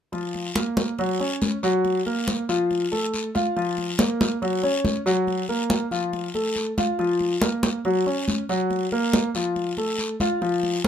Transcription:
0.12 grand piano F3 F4, high conga, long guiro
0.35 high conga
0.55 grand piano A#3 A#4, high conga, short guiro
0.77 high conga, short guiro
0.99 grand piano F#3 F#4, high conga, long guiro
1.20 grand piano C#4 C#5, high conga
1.42 high conga, short guiro
1.63 grand piano F#3 F#4, high conga, short guiro
1.85 high conga, long guiro
2.06 grand piano A#3 A#4, high conga
2.28 high conga, short guiro
2.49 grand piano F3 F4, high conga, short guiro
2.71 high conga, long guiro
2.92 grand piano A3 A4, high conga
3.14 high conga, short guiro
3.35 grand piano F4 F5, high conga, short guiro
3.56 grand piano F3 F4, high conga, long guiro
3.78 high conga
3.99 grand piano A#3 A#4, high conga, short guiro
4.21 high conga, short guiro
4.42 grand piano F#3 F#4, high conga, long guiro
4.63 grand piano C#4 C#5, high conga
4.85 high conga, short guiro
5.06 grand piano F#3 F#4, high conga, short guiro
5.27 high conga, long guiro
5.49 grand piano A#3 A#4, high conga
5.70 high conga, short guiro
5.91 grand piano F3 F4, high conga, short guiro
6.13 high conga, long guiro
6.35 grand piano A3 A4, high conga
6.56 high conga, short guiro
6.78 grand piano F4 F5, high conga, short guiro
6.99 grand piano F3 F4, high conga, long guiro
7.20 high conga
7.42 grand piano A#3 A#4, high conga, short guiro
7.63 high conga, short guiro
7.85 grand piano F#3 F#4, high conga, long guiro
8.06 grand piano C#4 C#5, high conga
8.28 high conga, short guiro
8.49 grand piano F#3 F#4, high conga, short guiro
8.70 high conga, long guiro
8.92 grand piano A#3 A#4, high conga
9.13 high conga, short guiro
9.35 grand piano F3 F4, high conga, short guiro
9.56 high conga, long guiro
9.77 grand piano A3 A4, high conga
9.98 high conga, short guiro
10.20 grand piano F4 F5, high conga, short guiro
10.42 grand piano F3 F4, high conga, long guiro
10.63 high conga
10.84 grand piano A#3, high conga, short guiro

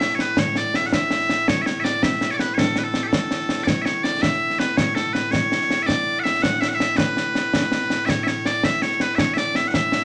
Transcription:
Already playing: bagpipes A2 E5
0.01 snare
0.10 snare
0.15 bagpipes C#5, snare
0.20 bagpipes B4
0.37 bagpipes C#5, concert bass drum, snare
0.55 bagpipes D5, snare
0.74 bagpipes E5, snare
0.86 bagpipes F#5
0.93 bagpipes E5, concert bass drum, snare
1.10 snare
1.20 snare
1.29 snare
1.48 bagpipes C#5, concert bass drum, snare
1.62 bagpipes E5
1.66 bagpipes C#5, snare
1.80 bagpipes E5
1.84 bagpipes D5, snare
2.03 bagpipes E5, concert bass drum, snare
2.12 snare
2.21 snare
2.30 bagpipes C#5 D5, snare
2.35 bagpipes C#5
2.39 bagpipes B4, snare
2.54 bagpipes C#5, concert bass drum, snare
2.59 bagpipes A4
2.76 bagpipes B4, snare
2.84 bagpipes A4
2.94 snare
3.03 bagpipes G4
3.08 bagpipes A4
3.13 concert bass drum, snare
3.31 snare
3.40 snare
3.49 snare
3.58 snare
3.64 bagpipes C#5 D5, concert bass drum, snare
3.82 bagpipes C#5 E5, snare
4.03 bagpipes D5, snare
4.22 bagpipes E5, concert bass drum, snare
4.32 snare
4.50 snare
4.59 bagpipes B4, snare
4.77 bagpipes C#5, concert bass drum, snare
4.95 bagpipes A4, snare
5.13 bagpipes B4, snare
5.31 bagpipes C#5, concert bass drum, snare
5.52 snare
5.61 snare
5.71 snare
5.83 bagpipes E5
5.87 bagpipes D5, concert bass drum, snare
6.20 bagpipes E5 F#5
6.25 snare
6.42 bagpipes F#5, concert bass drum, snare
6.53 snare
6.61 bagpipes E5, snare
6.68 bagpipes F#5, snare
6.75 bagpipes E5
6.80 snare
6.97 bagpipes B4, concert bass drum, snare
7.17 snare
7.35 snare
7.54 concert bass drum, snare
7.72 snare
7.81 snare
7.90 snare
8.05 bagpipes C#5 E5, concert bass drum, snare
8.23 bagpipes E5, snare
8.28 bagpipes C#5
8.45 bagpipes D5, snare
8.63 bagpipes E5, concert bass drum, snare
8.73 snare
8.82 bagpipes C#5, snare
8.91 snare
9.00 bagpipes B4, snare
9.15 bagpipes C#5 E5, concert bass drum, snare
9.34 bagpipes E5, snare
9.38 bagpipes D5
9.55 bagpipes E5, snare
9.68 bagpipes F#5
9.74 bagpipes E5, concert bass drum, snare
9.92 snare

